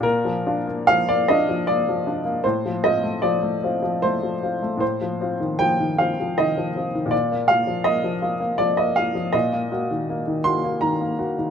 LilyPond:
<<
  \new Staff \with { instrumentName = "Upright piano" } { \time 3/4 \key bes \major \tempo 4 = 79 bes'4 f''16 d''16 ees''8 d''4 | c''8 ees''8 d''4 c''4 | c''4 g''8 f''8 ees''4 | d''8 f''8 ees''4 d''16 ees''16 f''8 |
ees''4. c'''8 bes''4 | }
  \new Staff \with { instrumentName = "Upright piano" } { \time 3/4 \key bes \major bes,16 f16 <d' f'>16 bes16 f16 bes16 <d' f'>16 f16 bes16 f16 <d' f'>16 bes16 | a,16 f16 <c' f'>16 a16 f16 a16 <c' f'>16 f16 a16 f16 <c' f'>16 a16 | a,16 f16 <c' f'>16 ees16 f16 ees16 <c' f'>16 f16 ees16 f16 <c' f'>16 ees16 | bes,16 bes16 <bes f'>16 f16 bes16 f16 <bes f'>16 bes16 f16 bes16 <bes f'>16 f16 |
bes,16 bes16 <bes ges'>16 ees16 bes16 ees16 <bes ges'>16 bes16 ees16 bes16 <bes ges'>16 ees16 | }
>>